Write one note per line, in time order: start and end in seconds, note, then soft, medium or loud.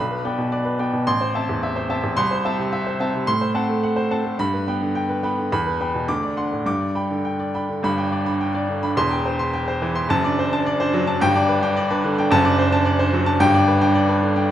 0.00 1.04 B1 medium
0.00 0.20 B5 medium
0.11 0.33 B4 medium
0.25 0.47 B3 medium
0.25 0.38 D5 medium
0.25 0.38 G5 medium
0.38 0.61 B2 medium
0.52 0.75 D5 medium
0.65 0.88 B4 medium
0.79 1.02 B3 medium
0.79 0.92 D5 medium
0.79 0.92 G5 medium
0.93 1.07 B2 medium
1.07 2.14 A1 medium
1.07 1.29 C6 loud
1.21 1.43 C5 medium
1.35 1.57 C4 medium
1.35 1.47 E5 medium
1.35 1.48 A5 medium
1.49 1.71 E2 medium
1.63 1.85 E5 medium
1.76 1.98 C5 medium
1.89 2.12 C4 medium
1.89 2.02 E5 medium
1.89 2.02 A5 medium
2.03 2.17 E2 medium
2.17 3.24 C2 medium
2.17 2.39 C6 loud
2.31 2.53 C5 medium
2.45 2.67 C4 medium
2.45 2.57 E5 medium
2.45 2.58 A5 medium
2.59 2.81 C3 medium
2.73 2.94 E5 medium
2.87 3.08 C5 medium
3.00 3.22 C4 medium
3.00 3.12 E5 medium
3.00 3.13 A5 medium
3.14 3.27 C3 medium
3.27 4.35 A2 medium
3.27 3.50 C6 loud
3.41 3.64 C5 medium
3.55 3.77 C4 medium
3.55 3.68 F#5 medium
3.55 3.68 A5 medium
3.69 3.91 A3 medium
3.83 4.05 F#5 medium
3.96 4.19 C5 medium
4.11 4.33 C4 medium
4.11 4.23 F#5 medium
4.11 4.23 A5 medium
4.25 4.38 A3 medium
4.39 5.48 G2 medium
4.39 4.61 B5 loud
4.53 4.75 B4 medium
4.68 4.89 B3 medium
4.68 4.80 G5 medium
4.68 4.80 B5 medium
4.82 5.04 D3 medium
4.95 5.17 G5 medium
5.09 5.32 B4 medium
5.23 5.46 B3 medium
5.23 5.36 G5 medium
5.23 5.36 B5 medium
5.38 5.51 D3 medium
5.52 6.07 E2 medium
5.52 5.74 B5 loud
5.66 5.89 B4 medium
5.80 6.03 B3 medium
5.80 5.93 G5 medium
5.80 5.93 B5 medium
5.94 6.08 B2 medium
6.08 6.64 D2 medium
6.08 6.31 D6 medium
6.23 6.46 D5 medium
6.37 6.60 D4 medium
6.37 6.50 F#5 medium
6.37 6.50 C6 medium
6.52 6.66 A2 medium
6.66 7.80 G2 medium
6.66 6.90 D6 medium
6.81 7.04 D5 medium
6.95 7.19 D4 medium
6.95 7.08 G5 medium
6.95 7.09 B5 medium
7.11 7.34 D3 medium
7.25 7.48 G5 medium
7.40 7.63 D5 medium
7.55 7.78 D4 medium
7.55 7.68 G5 medium
7.55 7.68 B5 medium
7.69 7.84 D3 medium
7.83 8.93 G1 medium
7.83 8.94 G2 medium
7.83 8.07 B5 medium
7.98 8.21 D4 medium
7.98 8.21 G5 medium
8.12 8.35 D5 medium
8.26 8.49 D4 medium
8.26 8.49 B5 medium
8.41 8.63 G5 medium
8.54 8.77 D4 medium
8.54 8.77 D5 medium
8.69 8.91 D3 medium
8.83 8.97 D4 medium
8.83 8.97 B5 medium
8.96 10.06 E1 medium
8.96 10.07 E2 medium
8.96 9.20 C6 loud
9.11 9.33 G5 medium
9.26 9.48 C5 medium
9.39 9.62 C6 medium
9.54 9.76 G5 medium
9.68 9.90 C5 medium
9.82 10.04 E3 medium
9.95 10.10 C6 medium
10.09 11.17 F#1 medium
10.09 11.18 F#2 loud
10.09 10.33 A5 loud
10.24 10.47 D4 medium
10.24 10.47 D5 medium
10.39 10.61 C5 medium
10.53 10.75 D4 medium
10.53 10.75 A5 medium
10.66 10.88 D5 medium
10.80 11.02 D4 medium
10.80 11.02 C5 medium
10.94 11.15 F#3 medium
11.07 11.21 D4 medium
11.07 11.21 A5 medium
11.21 12.27 G1 loud
11.21 12.28 G2 loud
11.21 11.43 G5 loud
11.35 11.57 D4 medium
11.35 11.57 D5 medium
11.49 11.71 B4 medium
11.63 11.85 D4 medium
11.63 11.85 G5 medium
11.77 11.98 D5 medium
11.91 12.12 D4 medium
11.91 12.12 B4 medium
12.04 12.26 D3 medium
12.19 12.32 D4 medium
12.19 12.32 G5 medium
12.31 13.37 F#1 loud
12.31 13.38 F#2 loud
12.31 12.53 A5 loud
12.45 12.67 D4 medium
12.45 12.67 D5 medium
12.59 12.80 C5 medium
12.72 12.94 D4 medium
12.72 12.94 A5 loud
12.85 13.07 D5 medium
12.99 13.21 D4 medium
12.99 13.21 C5 medium
13.13 13.35 F#3 medium
13.26 13.41 D4 medium
13.26 13.40 A5 medium
13.39 14.47 G1 loud
13.39 14.48 G2 loud
13.39 13.62 G5 loud
13.54 13.76 D4 medium
13.54 13.76 D5 medium
13.68 13.90 B4 medium
13.81 14.04 D4 medium
13.81 14.04 G5 medium
13.95 14.17 D5 medium
14.09 14.31 D4 medium
14.09 14.31 B4 medium
14.22 14.45 D3 medium
14.36 14.51 D4 medium
14.36 14.49 G5 medium